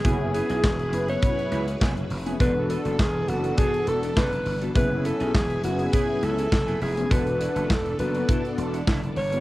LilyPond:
<<
  \new Staff \with { instrumentName = "Alto saxophone" } { \time 4/4 \key fis \minor \tempo 4 = 102 gis'8 gis'4~ gis'16 cis''4.~ cis''16 r8 | b'8 a'8 gis'8 fis'8 gis'8 a'8 b'8. r16 | b'8 a'8 gis'8 fis'8 gis'8 a'4 gis'8 | b'4 a'8 b'4 r4 cis''8 | }
  \new Staff \with { instrumentName = "Analog polysynth" } { \time 4/4 \key fis \minor <b cis' e' fis' gis'>4 r8 <b cis' e' b'>4~ <b cis' e' b'>16 r4 <b cis' e' gis'>16 | <b d' fis' a'>4 r8 <b d' fis' a'>4~ <b d' fis' a'>16 r4 <b d' fis' b'>16 | <b cis' e' gis'>4 r8 <b cis' e' gis'>4~ <b cis' e' gis'>16 r4 <b cis' e' gis'>16 | <b d' fis' a'>4 r8 <b d' fis' a'>4~ <b d' fis' a'>16 r4 <b d' fis' b'>16 | }
  \new Staff \with { instrumentName = "Clean electric guitar" } { \time 4/4 \key fis \minor <b e' gis'>16 r16 <b e' b'>16 <b e' gis'>16 r4. <b e' gis'>16 r16 <b e' gis'>16 r8 <b e' gis'>16 | <b d' a'>16 r16 <b d' b'>16 <b d' a'>16 r4 <b d' a'>16 r8 <b d' a'>16 <b d' a'>16 r8 <b d' a'>16 | <b e' gis'>16 r16 <b e' b'>16 <b e' gis'>16 r4 <b e' gis'>16 r8 <b e' gis'>16 r16 <b e' gis'>16 <b e' gis'>16 r16 | <d' e' a'>16 r16 <d' e' b'>16 <d' e' a'>16 r4 <d' e' a'>16 r8 <d' e' a'>16 <d' e' a'>16 r8 <d' e' a'>16 | }
  \new Staff \with { instrumentName = "String machine" } { \time 4/4 \key fis \minor <fis e' gis' b'>1 | <e b d' a'>1 | <fis e' b' gis''>1 | <e b d' a'>1 | }
  \new Staff \with { instrumentName = "Slap bass" } { \clef bass \time 4/4 \key fis \minor fis,,8. b,,16 e,,8 fis,,8 r8 cis,8 fis,,8 eis,,8 | e,,8. fis,,16 e,,8 fis,,8 r8 e,,8 fis,,8 g,,8 | fis,,8. b,,16 e,,8 fis,,8 r8 cis,8 fis,,8 eis,,8 | e,,8. fis,,16 e,,8 fis,,8 r8 e,,8 fis,,8 g,,8 | }
  \new DrumStaff \with { instrumentName = "Drums" } \drummode { \time 4/4 <hh bd>8 hh16 hh16 <hc bd sn>16 hh16 hh16 hh16 <hh bd>16 hh16 hh16 hh16 <hc bd sn>16 hh16 hho16 hh16 | <hh bd>8 hh16 hh16 <hc bd sn>8 hh16 hh16 <hh bd>16 hh16 hh16 hh16 <hc bd sn>16 hh16 hho16 hh16 | <hh bd>8 hh16 hh16 <hc bd sn>16 hh16 hh16 hh16 <hh bd>8 hh16 hh16 <hc bd sn>16 hh16 hho16 hh16 | <hh bd>16 hh16 hh16 hh16 <hc bd sn>16 hh16 hh16 hh16 <hh bd>16 hh16 hh16 hh16 <hc bd sn>16 hh16 hho16 hh16 | }
>>